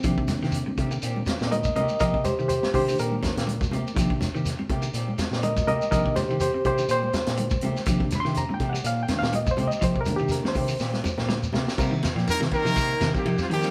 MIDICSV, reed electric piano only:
0, 0, Header, 1, 2, 480
1, 0, Start_track
1, 0, Key_signature, -3, "minor"
1, 0, Tempo, 489396
1, 43, Time_signature, 4, 2, 24, 8
1, 13443, End_track
2, 0, Start_track
2, 0, Title_t, "Reed electric piano"
2, 0, Program_c, 0, 4
2, 0, Note_on_c, 0, 60, 95
2, 28, Note_on_c, 0, 51, 54
2, 38, Note_on_c, 0, 58, 52
2, 42, Note_on_c, 0, 62, 65
2, 1210, Note_off_c, 0, 60, 0
2, 1443, Note_on_c, 0, 74, 66
2, 1476, Note_off_c, 0, 74, 0
2, 1481, Note_on_c, 0, 70, 84
2, 1489, Note_on_c, 0, 75, 100
2, 1706, Note_off_c, 0, 70, 0
2, 1717, Note_off_c, 0, 75, 0
2, 1726, Note_on_c, 0, 70, 75
2, 1729, Note_on_c, 0, 75, 91
2, 1918, Note_off_c, 0, 51, 0
2, 1923, Note_off_c, 0, 58, 0
2, 1925, Note_off_c, 0, 62, 0
2, 1949, Note_off_c, 0, 70, 0
2, 1960, Note_off_c, 0, 75, 0
2, 1964, Note_on_c, 0, 70, 84
2, 1970, Note_on_c, 0, 75, 98
2, 2188, Note_off_c, 0, 70, 0
2, 2199, Note_on_c, 0, 67, 92
2, 2200, Note_off_c, 0, 75, 0
2, 2206, Note_on_c, 0, 72, 103
2, 2423, Note_off_c, 0, 67, 0
2, 2429, Note_off_c, 0, 72, 0
2, 2434, Note_on_c, 0, 67, 66
2, 2441, Note_on_c, 0, 72, 78
2, 2663, Note_off_c, 0, 67, 0
2, 2676, Note_off_c, 0, 72, 0
2, 2679, Note_on_c, 0, 51, 58
2, 2687, Note_on_c, 0, 58, 49
2, 2689, Note_on_c, 0, 67, 87
2, 2694, Note_on_c, 0, 62, 58
2, 2698, Note_on_c, 0, 72, 96
2, 2910, Note_off_c, 0, 67, 0
2, 2925, Note_off_c, 0, 72, 0
2, 2938, Note_on_c, 0, 70, 97
2, 3366, Note_off_c, 0, 51, 0
2, 3370, Note_off_c, 0, 58, 0
2, 3374, Note_off_c, 0, 62, 0
2, 3863, Note_off_c, 0, 70, 0
2, 3866, Note_on_c, 0, 51, 54
2, 3870, Note_on_c, 0, 58, 51
2, 3877, Note_on_c, 0, 62, 64
2, 4093, Note_off_c, 0, 51, 0
2, 4097, Note_off_c, 0, 58, 0
2, 4210, Note_off_c, 0, 62, 0
2, 5286, Note_on_c, 0, 74, 73
2, 5320, Note_off_c, 0, 74, 0
2, 5326, Note_on_c, 0, 70, 86
2, 5330, Note_on_c, 0, 75, 104
2, 5549, Note_off_c, 0, 70, 0
2, 5561, Note_off_c, 0, 75, 0
2, 5564, Note_on_c, 0, 70, 89
2, 5573, Note_on_c, 0, 75, 93
2, 5788, Note_off_c, 0, 70, 0
2, 5788, Note_on_c, 0, 51, 54
2, 5794, Note_off_c, 0, 75, 0
2, 5794, Note_on_c, 0, 58, 52
2, 5798, Note_on_c, 0, 70, 82
2, 5805, Note_on_c, 0, 62, 60
2, 5805, Note_on_c, 0, 75, 91
2, 6025, Note_off_c, 0, 70, 0
2, 6036, Note_on_c, 0, 67, 86
2, 6038, Note_off_c, 0, 75, 0
2, 6040, Note_on_c, 0, 72, 102
2, 6125, Note_off_c, 0, 51, 0
2, 6129, Note_off_c, 0, 58, 0
2, 6135, Note_off_c, 0, 62, 0
2, 6264, Note_off_c, 0, 67, 0
2, 6276, Note_off_c, 0, 72, 0
2, 6281, Note_on_c, 0, 67, 81
2, 6290, Note_on_c, 0, 72, 91
2, 6506, Note_off_c, 0, 67, 0
2, 6521, Note_off_c, 0, 72, 0
2, 6530, Note_on_c, 0, 67, 84
2, 6540, Note_on_c, 0, 72, 96
2, 6751, Note_off_c, 0, 67, 0
2, 6766, Note_off_c, 0, 72, 0
2, 6779, Note_on_c, 0, 72, 103
2, 7704, Note_off_c, 0, 72, 0
2, 7719, Note_on_c, 0, 51, 53
2, 7726, Note_on_c, 0, 58, 50
2, 7735, Note_on_c, 0, 62, 62
2, 7997, Note_on_c, 0, 83, 82
2, 8035, Note_off_c, 0, 83, 0
2, 8044, Note_on_c, 0, 84, 122
2, 8200, Note_off_c, 0, 84, 0
2, 8215, Note_on_c, 0, 82, 94
2, 8366, Note_off_c, 0, 82, 0
2, 8376, Note_on_c, 0, 79, 97
2, 8406, Note_off_c, 0, 51, 0
2, 8410, Note_off_c, 0, 58, 0
2, 8415, Note_off_c, 0, 62, 0
2, 8526, Note_off_c, 0, 79, 0
2, 8528, Note_on_c, 0, 78, 86
2, 8682, Note_off_c, 0, 78, 0
2, 8695, Note_on_c, 0, 77, 92
2, 8846, Note_off_c, 0, 77, 0
2, 8855, Note_on_c, 0, 79, 104
2, 8930, Note_on_c, 0, 51, 51
2, 8932, Note_on_c, 0, 58, 46
2, 8934, Note_on_c, 0, 62, 57
2, 9006, Note_off_c, 0, 79, 0
2, 9011, Note_on_c, 0, 77, 100
2, 9144, Note_off_c, 0, 51, 0
2, 9146, Note_off_c, 0, 58, 0
2, 9146, Note_off_c, 0, 62, 0
2, 9164, Note_off_c, 0, 77, 0
2, 9174, Note_on_c, 0, 75, 90
2, 9325, Note_off_c, 0, 75, 0
2, 9329, Note_on_c, 0, 72, 101
2, 9483, Note_off_c, 0, 72, 0
2, 9490, Note_on_c, 0, 75, 93
2, 9644, Note_off_c, 0, 75, 0
2, 9650, Note_on_c, 0, 72, 97
2, 9803, Note_off_c, 0, 72, 0
2, 9815, Note_on_c, 0, 70, 104
2, 9872, Note_on_c, 0, 51, 56
2, 9877, Note_on_c, 0, 58, 53
2, 9880, Note_on_c, 0, 62, 65
2, 9966, Note_off_c, 0, 70, 0
2, 9968, Note_on_c, 0, 67, 98
2, 10117, Note_on_c, 0, 70, 87
2, 10122, Note_off_c, 0, 67, 0
2, 10277, Note_off_c, 0, 70, 0
2, 10281, Note_on_c, 0, 72, 99
2, 10563, Note_off_c, 0, 51, 0
2, 10565, Note_off_c, 0, 58, 0
2, 10567, Note_off_c, 0, 62, 0
2, 11214, Note_off_c, 0, 72, 0
2, 11560, Note_on_c, 0, 55, 90
2, 11561, Note_on_c, 0, 70, 102
2, 11562, Note_on_c, 0, 65, 82
2, 11563, Note_on_c, 0, 60, 84
2, 11802, Note_off_c, 0, 55, 0
2, 11802, Note_off_c, 0, 70, 0
2, 11803, Note_off_c, 0, 60, 0
2, 11803, Note_off_c, 0, 65, 0
2, 12037, Note_on_c, 0, 70, 89
2, 12040, Note_on_c, 0, 55, 76
2, 12041, Note_on_c, 0, 65, 71
2, 12042, Note_on_c, 0, 60, 71
2, 12466, Note_off_c, 0, 70, 0
2, 12467, Note_off_c, 0, 55, 0
2, 12468, Note_off_c, 0, 60, 0
2, 12468, Note_off_c, 0, 65, 0
2, 12887, Note_on_c, 0, 70, 98
2, 12889, Note_on_c, 0, 55, 83
2, 12889, Note_on_c, 0, 60, 83
2, 12894, Note_on_c, 0, 65, 81
2, 12999, Note_off_c, 0, 70, 0
2, 13000, Note_off_c, 0, 55, 0
2, 13000, Note_off_c, 0, 60, 0
2, 13002, Note_off_c, 0, 65, 0
2, 13126, Note_on_c, 0, 55, 81
2, 13130, Note_on_c, 0, 67, 90
2, 13131, Note_on_c, 0, 60, 72
2, 13132, Note_on_c, 0, 65, 71
2, 13239, Note_off_c, 0, 55, 0
2, 13241, Note_off_c, 0, 60, 0
2, 13241, Note_off_c, 0, 65, 0
2, 13241, Note_off_c, 0, 67, 0
2, 13375, Note_on_c, 0, 60, 75
2, 13378, Note_on_c, 0, 55, 87
2, 13381, Note_on_c, 0, 65, 83
2, 13382, Note_on_c, 0, 70, 97
2, 13443, Note_off_c, 0, 55, 0
2, 13443, Note_off_c, 0, 60, 0
2, 13443, Note_off_c, 0, 65, 0
2, 13443, Note_off_c, 0, 70, 0
2, 13443, End_track
0, 0, End_of_file